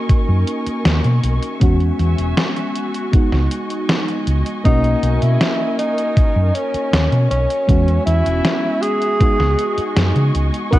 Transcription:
0.00 1.53 A#3 medium
0.00 1.53 C#4 medium
0.00 1.54 D#4 medium
0.00 1.54 F#4 loud
0.00 1.58 A#4 medium
0.00 1.57 D#5 medium
0.00 1.57 G#5 medium
0.00 9.16 C#6 medium
0.09 muted fingered electric bass stroke soft
0.09 kick loud
0.09 closed hi-hat medium
0.29 0.43 F#2 medium
0.47 closed hi-hat medium
0.66 muted fingered electric bass stroke soft
0.66 closed hi-hat soft
0.85 1.00 D#2 medium
0.85 snare loud
0.85 closed hi-hat medium
1.04 1.19 B2 medium
1.04 closed hi-hat soft
1.23 1.38 B1 medium
1.23 closed hi-hat medium
1.42 closed hi-hat soft
1.60 1.90 E2 medium
1.60 3.05 G#3 medium
1.60 3.05 B3 medium
1.60 3.06 C#4 medium
1.60 4.62 F#4 medium
1.60 3.06 F#4 medium
1.60 3.12 E5 medium
1.60 3.12 G#5 medium
1.60 kick loud
1.60 closed hi-hat medium
1.80 closed hi-hat soft
1.99 2.13 E2 medium
1.99 closed hi-hat medium
2.18 2.32 E1 medium
2.18 closed hi-hat soft
2.37 snare loud
2.37 closed hi-hat medium
2.56 closed hi-hat soft
2.76 closed hi-hat medium
2.94 closed hi-hat soft
3.12 4.57 G#3 medium
3.12 4.57 B3 medium
3.12 4.58 D#4 medium
3.12 4.58 F#4 medium
3.12 7.65 D#5 medium
3.12 7.65 G#5 medium
3.12 kick loud
3.12 closed hi-hat medium
3.32 3.46 C#2 medium
3.32 snare soft
3.51 closed hi-hat medium
3.70 closed hi-hat soft
3.89 snare loud
3.89 closed hi-hat medium
4.08 closed hi-hat soft
4.27 4.41 C#2 medium
4.27 closed hi-hat medium
4.46 closed hi-hat soft
4.64 4.94 B1 medium
4.64 7.61 A#3 medium
4.64 7.61 C#4 medium
4.64 5.23 D#4 loud
4.64 7.62 F#4 medium
4.64 7.66 A#4 medium
4.64 7.62 D#5 medium
4.64 kick loud
4.64 closed hi-hat medium
4.84 closed hi-hat soft
5.03 5.17 B1 loud
5.03 closed hi-hat medium
5.22 5.36 B2 medium
5.22 5.78 E4 medium
5.22 closed hi-hat soft
5.41 snare loud
5.41 closed hi-hat medium
5.79 6.56 D#4 medium
5.79 closed hi-hat medium
5.98 closed hi-hat soft
6.17 muted fingered electric bass stroke soft
6.17 kick loud
6.17 closed hi-hat medium
6.36 6.50 F#2 medium
6.55 7.30 C#4 medium
6.55 closed hi-hat medium
6.74 muted fingered electric bass stroke soft
6.74 closed hi-hat soft
6.93 7.07 D#2 medium
6.93 snare loud
6.93 closed hi-hat medium
7.12 7.26 B2 loud
7.12 closed hi-hat soft
7.30 7.45 B1 loud
7.30 8.03 C#4 medium
7.30 closed hi-hat medium
7.50 closed hi-hat soft
7.67 7.97 E2 medium
7.67 9.12 G#3 medium
7.67 9.13 B3 medium
7.67 9.13 C#4 medium
7.67 10.70 F#4 medium
7.67 9.14 F#4 medium
7.67 9.19 E5 medium
7.67 9.19 G#5 medium
7.67 kick loud
7.67 closed hi-hat medium
7.88 closed hi-hat soft
8.06 8.21 E2 loud
8.06 8.84 E4 loud
8.06 closed hi-hat medium
8.26 8.40 E1 medium
8.26 closed hi-hat soft
8.45 snare loud
8.45 closed hi-hat medium
8.82 10.34 G#4 loud
8.82 closed hi-hat medium
9.02 closed hi-hat soft
9.19 10.64 G#3 medium
9.19 10.65 B3 medium
9.19 10.65 D#4 medium
9.19 10.66 F#4 medium
9.19 10.79 D#5 medium
9.19 10.79 G#5 medium
9.19 10.79 C#6 medium
9.19 kick loud
9.19 closed hi-hat medium
9.40 9.54 C#2 loud
9.40 snare soft
9.59 closed hi-hat medium
9.78 muted fingered electric bass stroke soft
9.78 closed hi-hat soft
9.96 10.11 F#2 medium
9.96 snare loud
9.96 closed hi-hat medium
10.16 10.30 C#3 loud
10.16 closed hi-hat soft
10.35 10.49 C#2 loud
10.35 closed hi-hat medium
10.54 closed hi-hat soft
10.71 10.79 B1 medium
10.71 10.79 B3 loud
10.71 10.79 C#4 medium
10.71 10.79 D#4 medium
10.71 10.79 F#4 loud
10.71 10.79 A#4 medium
10.71 kick loud
10.71 closed hi-hat medium

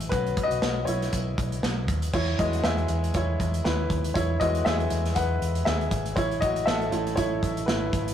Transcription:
0.00 0.13 E3 medium
0.00 0.14 A3 soft
0.00 0.12 C#4 medium
0.00 0.13 E4 medium
0.00 0.12 F#4 medium
0.00 0.14 G#4 medium
0.00 0.14 C#5 medium
0.00 0.13 D#5 medium
0.00 0.13 E5 medium
0.00 closed hi-hat medium
0.09 0.32 B1 medium
0.09 0.83 F#3 medium
0.09 0.83 B3 soft
0.09 0.83 C#4 medium
0.09 0.43 F#4 medium
0.09 0.45 B4 medium
0.09 kick medium
0.09 closed hi-hat medium
0.27 closed hi-hat soft
0.37 kick medium
0.37 closed hi-hat medium
0.43 0.85 F#4 medium
0.43 0.88 D#5 medium
0.50 0.60 B1 medium
0.50 closed hi-hat soft
0.62 0.83 B1 medium
0.62 snare loud
0.85 1.08 B1 medium
0.85 1.60 E4 medium
0.85 1.58 C#5 medium
0.85 closed hi-hat medium
1.02 snare soft
1.02 closed hi-hat soft
1.13 1.33 B1 medium
1.13 kick medium
1.13 closed hi-hat medium
1.38 1.58 B1 medium
1.38 kick medium
1.38 closed hi-hat medium
1.52 closed hi-hat soft
1.63 1.88 B1 medium
1.63 snare medium
1.88 2.09 D#2 medium
1.88 kick medium
1.88 closed hi-hat medium
2.02 closed hi-hat medium
2.13 2.34 E2 medium
2.13 2.38 E4 medium
2.13 2.39 C#5 medium
2.13 kick medium
2.13 crash medium
2.39 2.59 E2 medium
2.39 4.37 G#3 soft
2.39 4.37 B3 soft
2.39 3.15 E4 medium
2.39 2.63 F#4 medium
2.39 2.65 D#5 medium
2.39 kick medium
2.39 closed hi-hat medium
2.53 closed hi-hat soft
2.64 2.84 E2 medium
2.64 3.12 G#4 medium
2.64 3.16 E5 medium
2.64 snare loud
2.78 closed hi-hat soft
2.88 3.10 E2 medium
2.88 closed hi-hat medium
3.04 closed hi-hat soft
3.14 3.35 E2 medium
3.14 3.62 E4 medium
3.14 3.66 C#5 medium
3.14 kick medium
3.14 closed hi-hat medium
3.40 3.61 E2 medium
3.40 kick medium
3.40 closed hi-hat medium
3.54 closed hi-hat soft
3.64 3.86 D#2 medium
3.64 4.02 E4 medium
3.64 4.01 B4 medium
3.64 snare medium
3.90 4.11 D#2 medium
3.90 kick medium
3.90 closed hi-hat medium
4.04 closed hi-hat medium
4.14 4.36 E2 medium
4.14 4.39 E4 medium
4.14 4.41 C#5 medium
4.14 kick medium
4.14 closed hi-hat medium
4.40 4.61 E2 medium
4.40 6.13 G#3 soft
4.40 6.13 B3 soft
4.40 6.14 E4 medium
4.40 4.47 F#4 medium
4.40 4.45 D#5 medium
4.40 kick medium
4.40 closed hi-hat medium
4.55 closed hi-hat soft
4.65 4.86 E2 medium
4.65 5.13 G#4 medium
4.65 5.17 E5 medium
4.65 snare loud
4.80 closed hi-hat soft
4.90 5.11 E2 medium
4.90 closed hi-hat medium
5.05 snare soft
5.05 closed hi-hat soft
5.15 5.37 E2 medium
5.15 5.64 B4 medium
5.15 5.68 F#5 loud
5.15 kick medium
5.15 closed hi-hat medium
5.41 5.62 E2 medium
5.41 closed hi-hat medium
5.55 closed hi-hat soft
5.65 5.87 D#2 medium
5.65 6.04 G#4 medium
5.65 6.02 E5 medium
5.65 snare loud
5.81 closed hi-hat soft
5.91 6.12 G#1 medium
5.91 kick medium
5.91 closed hi-hat medium
6.06 closed hi-hat medium
6.16 6.37 A1 medium
6.16 6.41 E4 medium
6.16 6.42 C#5 loud
6.16 kick medium
6.16 closed hi-hat medium
6.31 closed hi-hat soft
6.41 6.63 A1 medium
6.41 6.66 F#4 medium
6.41 6.67 D#5 medium
6.41 kick medium
6.41 closed hi-hat medium
6.56 closed hi-hat medium
6.66 6.88 A1 loud
6.66 7.14 A4 medium
6.66 7.19 E5 medium
6.66 snare loud
6.82 closed hi-hat soft
6.91 7.13 A1 medium
6.91 7.27 A3 medium
6.91 7.27 C#4 soft
6.91 7.16 E4 medium
6.91 closed hi-hat medium
7.07 closed hi-hat medium
7.16 7.38 A1 medium
7.16 7.65 E4 medium
7.16 7.69 C#5 medium
7.16 kick medium
7.16 closed hi-hat medium
7.43 7.64 A1 medium
7.43 kick medium
7.43 closed hi-hat medium
7.57 closed hi-hat soft
7.66 7.89 G#1 medium
7.66 8.05 E4 medium
7.66 8.04 B4 medium
7.66 snare loud
7.93 8.14 G#1 medium
7.93 kick medium
7.93 closed hi-hat medium
8.08 closed hi-hat medium

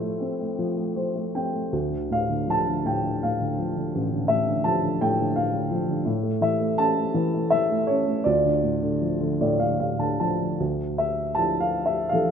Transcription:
0.00 1.70 A2 medium
0.00 0.57 F3 soft
0.00 0.40 A3 soft
0.00 1.33 A4 soft
0.00 0.95 C5 medium
0.20 1.33 C4 soft
0.40 0.75 A3 soft
0.59 0.95 F3 medium
0.77 1.14 A3 soft
0.96 1.71 F3 soft
0.96 1.32 C5 soft
1.15 1.52 A3 soft
1.35 1.72 C4 soft
1.35 1.71 G5 medium
1.53 1.72 A3 soft
1.72 3.90 D2 medium
1.90 2.28 D3 soft
2.10 2.83 A2 soft
2.10 2.51 F5 medium
2.29 2.65 D3 soft
2.47 3.57 F3 soft
2.47 2.88 A5 medium
2.67 3.02 D3 soft
2.85 3.21 A2 soft
2.85 3.24 G5 medium
3.03 3.40 D3 soft
3.23 4.27 A2 soft
3.23 3.90 F5 medium
3.41 3.75 D3 soft
3.58 4.63 F3 soft
3.76 4.11 D3 soft
3.95 6.03 A1 medium
4.12 4.45 D3 soft
4.28 4.99 A2 soft
4.28 4.62 E5 medium
4.46 4.81 D3 soft
4.64 5.69 F3 soft
4.64 4.98 A5 medium
4.82 5.18 D3 soft
5.01 5.35 A2 medium
5.01 5.38 G5 medium
5.19 5.52 D3 soft
5.36 6.04 A2 soft
5.36 6.02 F5 medium
5.53 5.87 D3 soft
5.71 6.05 F3 medium
5.88 6.06 D3 soft
6.05 8.21 A2 medium
6.23 6.58 A3 soft
6.41 7.13 E3 soft
6.41 6.80 E5 medium
6.60 6.96 A3 medium
6.78 7.88 C#4 soft
6.78 7.54 A5 medium
6.97 7.32 A3 soft
7.14 7.52 E3 medium
7.34 7.69 A3 soft
7.50 8.24 E3 soft
7.50 7.89 E5 medium
7.71 8.05 A3 soft
7.87 8.25 C#4 medium
7.87 8.26 C#5 medium
8.07 8.25 A3 soft
8.24 10.56 D2 medium
8.24 10.16 F4 soft
8.24 9.39 D5 medium
8.45 8.81 D3 soft
8.63 9.39 A2 soft
8.82 9.19 D3 medium
9.01 10.18 F3 soft
9.20 9.58 D3 medium
9.41 9.78 A2 medium
9.41 9.59 D5 medium
9.60 9.98 D3 soft
9.60 9.78 F5 medium
9.79 10.57 A2 soft
9.79 9.99 F5 medium
9.99 10.38 D3 soft
9.99 10.18 A5 medium
10.20 10.59 F3 medium
10.20 10.57 A5 medium
10.39 10.59 D3 soft
10.60 12.31 D2 medium
10.98 11.38 E5 medium
11.35 11.97 F3 soft
11.35 11.97 D4 soft
11.35 11.97 E4 soft
11.35 11.62 A5 medium
11.60 11.87 F5 medium
11.86 12.12 E5 medium
12.09 12.31 E3 soft
12.09 12.31 F3 soft
12.09 12.31 D4 soft
12.09 12.31 F5 medium
12.13 12.31 A4 medium

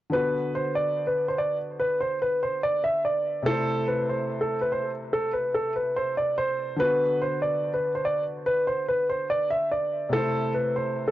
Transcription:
0.10 3.41 D3 medium
0.10 3.42 B3 medium
0.10 0.52 B4 medium
0.14 3.43 F#4 medium
0.14 3.44 B4 medium
0.55 0.73 C5 medium
0.75 1.05 D5 medium
1.07 1.25 B4 medium
1.28 1.37 C5 medium
1.38 1.56 D5 medium
1.80 1.98 B4 medium
2.01 2.18 C5 medium
2.22 2.40 B4 medium
2.43 2.60 C5 medium
2.63 2.81 D5 medium
2.84 3.02 E5 medium
3.05 3.44 D5 medium
3.43 6.74 C3 medium
3.43 6.75 A3 medium
3.43 3.85 A4 loud
3.47 6.76 E4 medium
3.47 6.77 C5 medium
3.88 4.06 B4 medium
4.09 4.39 C5 medium
4.41 4.59 A4 medium
4.61 4.70 B4 medium
4.72 4.90 C5 medium
5.13 5.31 A4 medium
5.33 5.51 B4 medium
5.54 5.72 A4 medium
5.76 5.94 B4 medium
5.96 6.14 C5 medium
6.17 6.35 D5 medium
6.38 6.77 C5 medium
6.76 10.07 D3 medium
6.76 10.09 B3 medium
6.76 7.19 B4 loud
6.81 10.10 F#4 medium
6.81 10.11 B4 medium
7.22 7.39 C5 medium
7.42 7.72 D5 medium
7.74 7.92 B4 medium
7.95 8.03 C5 medium
8.05 8.23 D5 medium
8.46 8.64 B4 medium
8.67 8.85 C5 medium
8.88 9.06 B4 medium
9.09 9.27 C5 medium
9.30 9.48 D5 medium
9.50 9.68 E5 medium
9.71 10.11 D5 medium
10.09 11.11 C3 medium
10.09 11.11 A3 medium
10.09 10.52 A4 loud
10.14 11.11 E4 medium
10.14 11.11 C5 medium
10.54 10.72 B4 medium
10.76 11.06 C5 medium
11.08 11.11 A4 medium

